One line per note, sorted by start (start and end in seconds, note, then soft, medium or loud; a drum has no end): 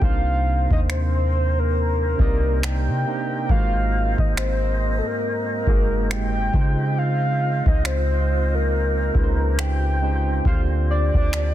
0.01 0.68 C2 loud
0.01 1.51 C3 medium
0.01 1.51 A#3 medium
0.01 11.54 C4 medium
0.01 1.51 D4 medium
0.01 1.52 D#4 medium
0.01 6.50 A#4 medium
0.01 3.46 C5 medium
0.01 1.52 C5 medium
0.01 0.71 F5 loud
0.01 kick loud
0.71 2.15 D#2 loud
0.71 0.80 D#5 medium
0.71 kick medium
0.90 1.61 C5 medium
0.90 finger snap medium
1.59 2.66 A#4 medium
2.18 2.90 C2 loud
2.18 2.94 C3 medium
2.18 2.95 A#3 medium
2.18 2.95 D#4 medium
2.18 2.95 D5 medium
2.18 2.96 D#5 medium
2.18 kick medium
2.63 3.52 G5 loud
2.63 finger snap loud
2.88 3.05 C3 medium
3.05 3.44 C3 medium
3.05 3.44 A#3 medium
3.05 3.44 D4 medium
3.05 3.45 D#4 medium
3.05 3.45 C5 medium
3.49 4.16 G#1 loud
3.49 4.99 G#2 medium
3.49 4.99 G#3 medium
3.49 4.99 A#3 medium
3.49 5.00 F#4 medium
3.49 3.58 B4 medium
3.49 6.51 D#5 medium
3.49 4.21 F5 loud
3.49 kick loud
3.59 5.03 C5 medium
4.18 5.02 G#1 loud
4.18 4.37 D#5 medium
4.18 kick medium
4.37 5.00 C5 medium
4.37 finger snap loud
4.98 5.08 A4 medium
5.07 6.13 A#4 medium
5.66 6.51 F#1 medium
5.66 6.42 G#2 medium
5.66 6.43 G#3 medium
5.66 6.43 A#3 medium
5.66 6.43 F#4 medium
5.66 6.44 G#4 medium
5.66 kick medium
6.11 7.00 G5 loud
6.11 finger snap loud
6.53 8.03 C#3 medium
6.53 7.62 C#3 loud
6.53 8.03 G#3 medium
6.53 8.04 D#4 medium
6.53 10.18 F4 medium
6.53 8.04 F4 medium
6.53 8.04 C5 medium
6.53 10.21 D#5 medium
6.53 kick loud
6.98 7.69 F5 loud
7.66 9.11 C#2 loud
7.66 7.88 D#5 medium
7.66 kick medium
7.85 8.56 C5 medium
7.85 finger snap medium
8.55 9.61 A#4 medium
9.14 10.41 C#2 loud
9.14 9.90 C#3 medium
9.14 9.90 G#3 medium
9.14 9.91 D#4 medium
9.14 9.91 F4 medium
9.14 9.24 B4 medium
9.14 kick medium
9.24 9.95 C5 medium
9.59 10.46 G5 loud
9.59 finger snap loud
10.01 10.39 C#3 medium
10.01 10.40 G#3 medium
10.01 10.40 D#4 medium
10.01 10.40 F4 medium
10.01 10.41 C5 medium
10.45 11.11 D2 loud
10.45 10.53 C3 medium
10.45 11.54 A#3 medium
10.45 11.54 F4 medium
10.45 11.54 G4 medium
10.45 11.54 C5 medium
10.45 11.54 D5 medium
10.45 10.61 F5 loud
10.45 kick loud
10.51 11.54 D3 medium
10.91 11.54 D5 loud
11.14 11.54 D2 loud
11.14 kick medium
11.33 finger snap loud